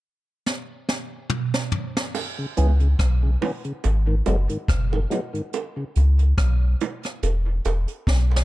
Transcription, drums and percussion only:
0.46 snare medium
0.89 snare medium
1.30 mid tom medium
1.54 snare medium
1.72 floor tom loud
1.97 snare medium
2.15 crash medium
2.15 high bongo medium
2.57 closed hi-hat medium
2.57 high bongo soft
2.80 closed hi-hat soft
2.99 kick loud
2.99 cross-stick loud
2.99 closed hi-hat loud
3.42 open hi-hat soft
3.42 low bongo medium
3.64 closed hi-hat soft
3.84 closed hi-hat medium
3.84 high bongo medium
4.26 closed hi-hat medium
4.26 high bongo medium
4.49 closed hi-hat soft
4.68 kick loud
4.68 cross-stick loud
4.68 closed hi-hat loud
4.93 high bongo medium
5.11 closed hi-hat medium
5.11 low bongo medium
5.35 closed hi-hat soft
5.53 closed hi-hat medium
5.53 high bongo medium
5.96 closed hi-hat medium
5.96 high bongo soft
6.19 closed hi-hat soft
6.38 kick loud
6.38 cross-stick loud
6.38 closed hi-hat loud
6.80 closed hi-hat medium
6.80 low bongo medium
7.03 cross-stick medium
7.03 closed hi-hat medium
7.23 closed hi-hat medium
7.23 high bongo medium
7.65 closed hi-hat medium
7.65 high bongo medium
7.88 closed hi-hat soft
8.07 kick medium
8.07 snare medium
8.31 high bongo soft
8.36 snare medium

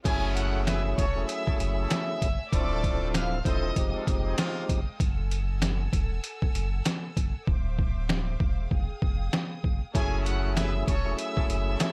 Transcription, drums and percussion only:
0.05 kick loud
0.05 closed hi-hat medium
0.05 crash loud
0.37 closed hi-hat medium
0.67 snare loud
0.67 closed hi-hat loud
0.98 kick loud
0.98 closed hi-hat medium
1.29 closed hi-hat medium
1.47 kick medium
1.60 closed hi-hat medium
1.90 snare loud
1.90 closed hi-hat loud
2.22 kick medium
2.22 closed hi-hat medium
2.53 kick loud
2.53 closed hi-hat loud
2.84 kick loud
2.84 closed hi-hat medium
3.14 snare loud
3.14 closed hi-hat loud
3.45 kick loud
3.45 closed hi-hat medium
3.76 kick loud
3.76 closed hi-hat medium
4.07 kick loud
4.07 closed hi-hat medium
4.38 snare loud
4.38 closed hi-hat loud
4.69 kick loud
4.69 closed hi-hat medium
5.00 kick loud
5.00 closed hi-hat medium
5.31 closed hi-hat medium
5.62 snare loud
5.62 closed hi-hat loud
5.93 kick loud
5.93 closed hi-hat medium
6.24 closed hi-hat medium
6.42 kick medium
6.55 closed hi-hat medium
6.85 snare loud
6.85 closed hi-hat loud
7.17 kick loud
7.17 closed hi-hat medium
7.47 kick loud
7.79 kick loud
8.09 snare loud
8.40 kick loud
8.71 kick loud
9.02 kick medium
9.33 snare loud
9.64 kick medium
9.95 kick loud
9.95 closed hi-hat loud
10.26 closed hi-hat medium
10.57 snare loud
10.57 closed hi-hat loud
10.88 kick loud
10.88 closed hi-hat medium
11.19 closed hi-hat medium
11.37 kick medium
11.50 closed hi-hat medium
11.80 snare loud
11.80 closed hi-hat loud

